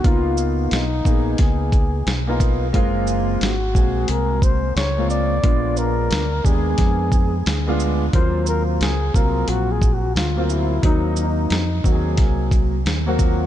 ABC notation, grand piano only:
X:1
M:4/4
L:1/16
Q:"Swing 16ths" 1/4=89
K:Ebdor
V:1 name="Grand piano"
[B,_CEF]4 z2 [B,CEA]4- [B,CEA] z2 [B,CEF]2 z | [A,B,CF]4 z2 [A,B,CA]4- [A,B,CA] z2 [A,B,CF]2 z | [A,_C=DF]4 z2 [A,CD=GA]4- [A,CDGA] z2 [A,CDF]2 z | [G,B,CF]4 z2 [G,B,CF]4- [G,B,CF] z2 [G,B,CF]2 z |
[G,B,CE]4 z2 [G,B,CGA]4- [G,B,CGA] z2 [G,B,CG]2 z |]